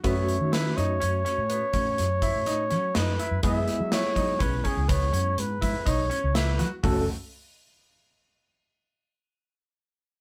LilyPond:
<<
  \new Staff \with { instrumentName = "Flugelhorn" } { \time 7/4 \key fis \dorian \tempo 4 = 123 cis''4 b'8 cis''1~ cis''8 b'4 | e''4 cis''4 b'8 gis'8 cis''4 b'4 cis''4 b'4 | a'8 r1. r8 | }
  \new Staff \with { instrumentName = "Grand piano" } { \time 7/4 \key fis \dorian b4 e'8 dis'8 cis'8 cis'8 b8 cis'4 e'8 dis'8 cis'8 dis'8 e'8 | b4 e'8 dis'8 cis'8 cis'8 b8 cis'4 e'8 dis'8 cis'8 e'8 fis'8 | fis'8 r1. r8 | }
  \new Staff \with { instrumentName = "Tine electric piano" } { \time 7/4 \key fis \dorian <a cis' fis' e''>1.~ <a cis' fis' e''>4 | <gis b e' gis'>1.~ <gis b e' gis'>4 | <a cis' fis' a'>8 r1. r8 | }
  \new Staff \with { instrumentName = "Fretless electric bass" } { \clef bass \time 7/4 \key fis \dorian fis,8. dis8. fis,8 fis,8 r16 a,8 r16 a,8 fis,8. a,8. fis8 fis,8 r16 fis,16 | fis,8 r16 fis8 r16 fis8 b,,8 r16 cis,8. fis,8 gis,8 gis,16 r16 b,,8 r16 cis,8. fis16 r16 | fis,,8 r1. r8 | }
  \new DrumStaff \with { instrumentName = "Drums" } \drummode { \time 7/4 <hh bd>8 hh8 <hh sn>8 hh8 hh8 <hh sn>8 hh8 <hh bd>8 <hh sn>8 <hh bd>8 <hh sn>8 <hh sn>8 <hh sn>8 hh8 | <hh bd>8 <hh sn>8 <hh sn>8 <hh bd>8 <hh bd>8 <hh bd>8 <hh bd>8 hh8 <hh sn>8 <hh bd>8 <hh bd>8 hh8 <hh sn>8 <hh sn>8 | <hho bd tomfh>4 r4 r4 r4 r4 r4 r4 | }
>>